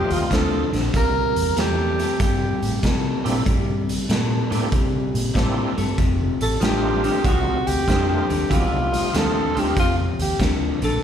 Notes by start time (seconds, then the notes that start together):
Already playing: F2 C3 G3 A3 C4 D#4 F4 G4
0.10 D#2 F4, closed hi-hat
0.30 D2 F2 D3 A4, kick, snare, closed hi-hat
0.73 A#1 F2 D3, snare, closed hi-hat
0.93 C2 C3 G3 A#4, kick, closed hi-hat
1.36 E2, closed hi-hat
1.57 E2 C3 A3 G4, snare, closed hi-hat
1.99 C3 A3, closed hi-hat
2.20 G2 C3 G3 G4, kick, closed hi-hat
2.62 A2, closed hi-hat
2.83 C3 A3, kick, snare, closed hi-hat
3.24 A#2 C3 G3 A3 A#3 C4 D4 E4, closed hi-hat
3.45 G2 C3 G3, kick, closed hi-hat
3.89 closed hi-hat
4.09 A#2 C3 A3, snare, closed hi-hat
4.50 A2 C3 G3 A3 A#3 C4 D4 E4, closed hi-hat
4.72 C3 G3, kick, closed hi-hat
5.15 A#2, closed hi-hat
5.34 A2 C3 G3 A3 A#3 C4 D4 E4, kick, snare, closed hi-hat
5.77 G2 C3 A3, closed hi-hat
5.98 F1 F2 C3, kick, closed hi-hat
6.41 A1 A4, closed hi-hat
6.60 A1 F2 D3 G3 A3 C4 D#4 F4 G4, snare, closed hi-hat
7.03 F2 D3, closed hi-hat
7.24 C2 F2 C3 F#4, kick, closed hi-hat
7.67 D2 G4, closed hi-hat
7.87 F2 D3 G3 A3 C4 D#4 F4, kick, snare, closed hi-hat
8.09 G4
8.30 D#2 F2 D3, closed hi-hat
8.49 C2 F2 C3 F#3 G#3 B3 D4 E4 F4, kick, closed hi-hat
8.92 G3 A3 C4 D#4 F4, closed hi-hat
9.13 D#2 F2 D3 A4, snare, closed hi-hat
9.55 D2 F2 D3 G3 A3 C4 D#4 F4 G4, closed hi-hat
9.76 F2 C3 F4, kick, closed hi-hat
10.19 D#2 G4, closed hi-hat
10.39 D2 F2 D3, kick, snare, closed hi-hat
10.82 A#1 F2 D3 A4, closed hi-hat